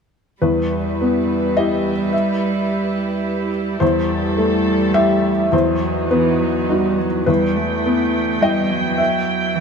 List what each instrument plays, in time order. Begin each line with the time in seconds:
0.42 felt piano E2 B4, cello G3, string section E4 G4 B4
1.01 felt piano B3
1.57 felt piano E4 G4 D#5
2.13 felt piano E5
3.80 felt piano E2 C5, cello G3, string section A4
4.38 felt piano A3
4.94 felt piano E4 G4 E5
5.52 felt piano E2 C5, cello F#3, string section D#4 F#4
6.10 cello E3, felt piano B3 B4
6.39 cello F#3
6.69 cello G3, felt piano D#4 F#4
6.98 cello F#3
7.26 felt piano E2 B4, cello G3, string section B3 G5
7.55 cello A3
7.86 felt piano B3
8.41 cello G3, felt piano E4 D#5 G5
8.70 cello F#3
8.98 felt piano E5
9.55 cello E3